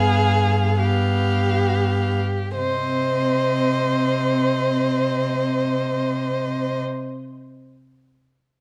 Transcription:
0.00 2.18 G2 medium
0.00 0.79 B3 medium
0.00 0.81 G#4 medium
0.00 0.79 F5 medium
0.79 2.19 B3 medium
0.79 2.56 G4 medium
0.79 2.19 F5 soft
2.55 6.79 C3 soft
2.55 6.78 C4 soft
2.55 6.81 C5 medium
2.55 6.80 D#5 soft

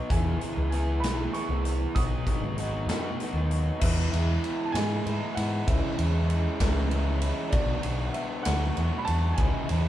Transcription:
0.00 0.10 B3 medium
0.10 0.72 E2 medium
0.10 0.34 E2 medium
0.10 0.72 B2 medium
0.10 0.42 E3 medium
0.10 0.42 B3 loud
0.10 0.41 E4 loud
0.10 0.39 G#4 medium
0.10 0.68 G#5 medium
0.10 kick loud
0.10 closed hi-hat medium
0.41 0.71 E3 medium
0.41 0.72 B3 medium
0.41 0.72 E4 medium
0.41 0.73 G#4 medium
0.41 closed hi-hat medium
0.57 1.02 C#2 medium
0.70 1.04 E3 medium
0.70 1.04 B3 medium
0.70 1.04 E4 medium
0.70 1.00 G#5 medium
0.70 closed hi-hat medium
0.74 1.03 G#4 medium
1.00 1.26 B1 medium
1.00 1.34 G#4 medium
1.00 1.34 B5 medium
1.00 closed hi-hat loud
1.04 1.67 E2 medium
1.04 1.66 B2 medium
1.04 1.32 E3 medium
1.04 1.34 B3 medium
1.04 1.33 E4 medium
1.04 snare loud
1.33 1.94 E3 medium
1.33 1.96 B3 medium
1.33 1.95 E4 medium
1.33 1.95 G#4 medium
1.33 1.98 C#6 medium
1.33 closed hi-hat medium
1.49 1.84 C2 medium
1.65 closed hi-hat medium
1.95 2.19 B1 medium
1.95 2.58 B2 medium
1.95 2.56 F#3 medium
1.95 2.27 B3 medium
1.95 2.26 D#4 loud
1.95 2.25 F#4 loud
1.95 3.46 D#6 loud
1.95 kick loud
1.95 closed hi-hat medium
2.26 2.57 B3 medium
2.26 2.57 D#4 medium
2.26 2.58 F#4 medium
2.26 kick medium
2.26 closed hi-hat medium
2.41 2.88 G#1 medium
2.57 2.89 F#3 medium
2.57 2.88 B3 medium
2.57 2.88 D#4 medium
2.57 2.88 F#4 medium
2.57 closed hi-hat medium
2.86 3.11 F#2 medium
2.86 3.52 B2 medium
2.86 3.19 F#3 medium
2.86 3.20 B3 medium
2.86 3.20 D#4 medium
2.86 3.21 F#4 medium
2.86 snare loud
2.86 closed hi-hat medium
3.20 3.80 F#3 medium
3.20 3.81 B3 medium
3.20 3.81 D#4 medium
3.20 3.81 F#4 medium
3.20 closed hi-hat medium
3.33 3.69 D#2 medium
3.51 closed hi-hat medium
3.80 4.44 E2 loud
3.80 4.05 E2 medium
3.80 4.44 B2 medium
3.80 4.14 E3 loud
3.80 4.13 G#3 medium
3.80 4.12 B3 loud
3.80 4.12 E4 medium
3.80 4.69 E5 medium
3.80 kick loud
3.80 crash loud
4.12 4.36 E2 medium
4.12 4.75 E3 medium
4.12 4.74 G#3 medium
4.12 4.74 B3 medium
4.12 4.73 E4 medium
4.12 ride medium
4.44 ride medium
4.65 4.74 A5 medium
4.72 4.98 G#2 medium
4.72 5.05 G#3 medium
4.72 5.06 B3 medium
4.72 5.06 E4 medium
4.72 5.37 G#5 loud
4.72 snare loud
4.72 ride loud
4.76 5.38 E2 medium
4.76 5.37 B2 medium
4.76 5.04 E3 medium
5.05 5.18 G#2 medium
5.05 5.37 E3 medium
5.05 5.36 G#3 medium
5.05 5.36 B3 medium
5.05 5.35 E4 medium
5.05 ride medium
5.35 5.60 G#2 loud
5.35 5.67 E3 medium
5.35 5.66 G#3 medium
5.35 5.66 B3 medium
5.35 5.65 E4 medium
5.35 5.64 F#5 loud
5.35 ride medium
5.67 5.79 C#2 medium
5.67 6.30 C#3 medium
5.67 6.30 E3 medium
5.67 6.01 G#3 medium
5.67 6.00 C#4 loud
5.67 5.99 E4 loud
5.67 6.87 E5 medium
5.67 kick loud
5.67 ride loud
5.99 6.45 E2 medium
5.99 6.61 G#3 medium
5.99 6.60 C#4 medium
5.99 6.60 E4 medium
5.99 ride medium
6.30 ride medium
6.60 7.31 C#2 medium
6.60 7.24 C#3 medium
6.60 6.89 E3 medium
6.60 6.90 G#3 medium
6.60 6.90 C#4 medium
6.60 6.91 E4 medium
6.60 kick medium
6.60 snare loud
6.60 ride loud
6.90 7.51 E3 medium
6.90 7.22 G#3 medium
6.90 7.21 C#4 medium
6.90 7.20 E4 medium
6.90 ride medium
7.21 7.52 G#3 medium
7.21 7.51 C#4 medium
7.21 7.51 E4 medium
7.21 ride medium
7.50 7.76 B1 medium
7.50 8.14 B2 medium
7.50 8.14 F#3 medium
7.50 7.84 B3 medium
7.50 7.83 D4 loud
7.50 7.81 F#4 loud
7.50 8.03 D5 medium
7.50 kick loud
7.50 ride loud
7.82 8.08 B1 medium
7.82 8.45 B3 medium
7.82 8.44 D4 medium
7.82 8.44 F#4 medium
7.82 ride medium
8.06 8.14 F#5 medium
8.13 8.46 E5 medium
8.13 ride medium
8.43 8.70 D2 loud
8.43 9.08 B2 medium
8.43 8.74 F#3 medium
8.43 8.75 B3 medium
8.43 8.75 D4 medium
8.43 8.76 F#4 medium
8.43 9.01 F#5 loud
8.43 snare loud
8.43 ride loud
8.75 8.89 E2 medium
8.75 9.36 F#3 medium
8.75 9.07 B3 medium
8.75 9.06 D4 medium
8.75 9.05 F#4 medium
8.75 ride medium
8.98 9.07 B5 medium
9.05 9.31 E2 loud
9.05 9.37 B3 medium
9.05 9.36 D4 medium
9.05 9.36 F#4 medium
9.05 9.28 A5 loud
9.05 ride medium
9.29 9.38 A5 medium
9.34 9.88 C#3 medium
9.34 9.88 E3 medium
9.34 9.88 G#5 medium
9.34 ride medium
9.38 9.50 C#2 medium
9.38 9.70 G#3 medium
9.38 9.68 C#4 loud
9.38 9.68 E4 loud
9.38 kick loud
9.68 9.88 E2 medium
9.68 9.88 G#3 medium
9.68 9.88 C#4 medium
9.68 9.88 E4 medium
9.68 ride medium

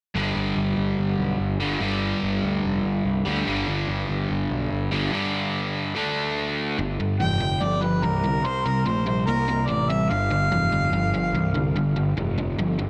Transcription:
0.15 0.31 G1 medium
0.15 1.63 G2 medium
0.15 1.60 D3 medium
0.15 1.60 G3 medium
0.37 0.52 G1 medium
0.56 0.73 G1 medium
0.78 0.94 G1 medium
0.99 1.14 G1 medium
1.19 1.35 B1 medium
1.40 1.56 G1 medium
1.60 1.76 G1 medium
1.60 1.79 G2 medium
1.60 1.80 D3 medium
1.60 1.82 G3 medium
1.80 2.13 G1 medium
1.80 3.28 G2 medium
1.80 3.25 D3 medium
1.80 3.25 G3 medium
2.23 2.39 G1 medium
2.44 2.59 D2 medium
2.65 2.80 F1 medium
2.85 3.01 G1 medium
3.05 3.21 C2 medium
3.25 3.42 D2 medium
3.25 3.45 G2 medium
3.25 3.46 D3 medium
3.25 3.48 G3 medium
3.45 3.63 G1 medium
3.45 4.90 G2 medium
3.45 4.91 D3 medium
3.45 4.90 G3 medium
3.68 3.84 G1 medium
3.89 4.04 G1 medium
4.09 4.25 G1 medium
4.31 4.46 G1 medium
4.51 4.67 B1 medium
4.72 4.87 G1 medium
4.91 5.08 G1 medium
4.91 5.10 G2 medium
4.91 5.12 D3 medium
4.91 5.11 G3 medium
5.12 5.94 G2 medium
5.12 5.94 D3 medium
5.12 5.95 G3 medium
5.95 6.77 D3 medium
5.95 6.78 A3 medium
5.95 6.78 D4 medium
6.78 6.99 G1 medium
6.78 6.97 G2 medium
6.78 6.97 D3 medium
7.00 7.20 G1 medium
7.00 7.18 G2 medium
7.00 7.18 D3 medium
7.20 7.60 F1 medium
7.20 7.39 G2 medium
7.20 7.39 E3 medium
7.20 7.63 G5 medium
7.40 7.59 G2 medium
7.40 7.59 D3 medium
7.61 8.02 G1 medium
7.61 7.80 G2 medium
7.61 7.80 F3 medium
7.61 7.83 D5 medium
7.82 8.00 G2 medium
7.82 8.01 F3 medium
7.82 8.05 B4 medium
8.03 8.43 C2 medium
8.03 8.22 G2 medium
8.03 8.22 E3 medium
8.03 8.47 A#4 medium
8.24 8.42 G2 medium
8.24 8.43 D3 medium
8.44 8.64 C2 medium
8.44 8.63 C3 medium
8.44 8.63 G3 medium
8.44 8.67 C5 medium
8.65 8.85 C2 medium
8.65 8.84 C3 medium
8.65 8.84 G3 medium
8.65 8.88 A#4 medium
8.86 9.26 A#1 medium
8.86 9.04 C3 medium
8.86 9.05 A3 medium
8.86 9.06 C5 medium
9.07 9.25 C3 medium
9.07 9.25 G3 medium
9.07 9.26 C5 medium
9.26 9.67 C2 medium
9.26 9.46 C3 medium
9.26 9.46 A#3 medium
9.26 9.68 A#4 medium
9.48 9.66 C3 medium
9.48 9.67 A#3 medium
9.66 10.08 A1 medium
9.66 9.87 C3 medium
9.66 9.87 A3 medium
9.66 9.90 D5 medium
9.89 10.08 C3 medium
9.89 10.08 G3 medium
9.89 10.11 E5 medium
10.10 10.30 G1 medium
10.10 10.29 G2 medium
10.10 10.29 D3 medium
10.10 11.75 F5 loud
10.30 10.50 G1 medium
10.30 10.49 G2 medium
10.30 10.49 D3 medium
10.51 10.91 F1 medium
10.51 10.70 G2 medium
10.51 10.70 E3 medium
10.72 10.91 G2 medium
10.72 10.91 D3 medium
10.92 11.32 G1 medium
10.92 11.11 G2 medium
10.92 11.11 F3 medium
11.14 11.32 G2 medium
11.14 11.32 F3 medium
11.33 11.73 C2 medium
11.33 11.53 G2 medium
11.33 11.53 E3 loud
11.54 11.73 G2 medium
11.54 11.73 D3 medium
11.75 11.95 G1 medium
11.75 11.94 G2 medium
11.75 11.94 D3 medium
11.96 12.16 G1 medium
11.96 12.15 G2 medium
11.96 12.15 D3 medium
12.16 12.56 F1 medium
12.16 12.35 G2 medium
12.16 12.36 E3 medium
12.38 12.56 G2 medium
12.38 12.56 D3 medium
12.58 12.90 G1 medium
12.58 12.77 G2 medium
12.58 12.77 F3 medium
12.79 12.90 G2 medium
12.79 12.90 F3 medium

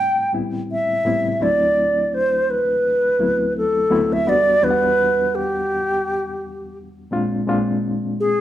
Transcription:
0.00 0.33 A2 medium
0.00 0.33 G3 medium
0.00 1.41 A3 medium
0.00 0.34 C4 medium
0.00 0.34 E4 medium
0.00 0.34 G5 loud
0.33 0.90 A2 medium
0.33 0.90 G3 medium
0.33 0.91 B3 medium
0.33 0.91 C4 medium
0.33 0.91 E4 medium
0.72 1.44 E5 loud
1.05 1.33 A2 medium
1.05 1.34 G3 medium
1.05 1.34 B3 medium
1.05 1.34 C4 medium
1.05 1.34 E4 medium
1.40 2.52 D2 medium
1.40 2.52 F#3 medium
1.40 2.52 A3 medium
1.40 2.53 C4 medium
1.40 2.52 D4 medium
1.40 2.53 E4 medium
1.40 2.16 D5 medium
2.14 2.52 C5 medium
2.50 3.56 B4 medium
3.18 3.76 D2 medium
3.18 3.76 F#3 medium
3.18 3.76 A3 medium
3.18 3.77 B3 medium
3.18 3.77 C4 medium
3.18 3.77 E4 medium
3.57 4.14 A4 medium
3.90 4.19 D2 medium
3.90 4.19 F#3 medium
3.90 4.19 A3 medium
3.90 4.20 B3 medium
3.90 4.20 C4 medium
3.90 4.20 E4 loud
4.13 4.30 E5 loud
4.26 4.55 E2 medium
4.26 4.55 G3 medium
4.26 4.55 B3 medium
4.26 4.56 D4 medium
4.26 4.56 F#4 medium
4.26 4.65 D5 loud
4.62 5.74 E2 medium
4.62 5.74 G3 medium
4.62 5.74 B3 medium
4.62 5.74 D4 medium
4.62 4.70 F4 medium
4.62 5.37 B4 loud
4.70 5.78 F#5 medium
5.35 6.77 G4 medium
7.11 7.40 A#2 medium
7.11 7.41 G#3 medium
7.11 7.41 C4 medium
7.11 7.41 D4 medium
7.11 7.41 F4 loud
7.47 8.41 A#2 medium
7.47 8.41 G#3 medium
7.47 8.41 C4 medium
7.47 8.41 D4 medium
7.47 8.41 F4 medium
8.20 8.41 G#4 medium

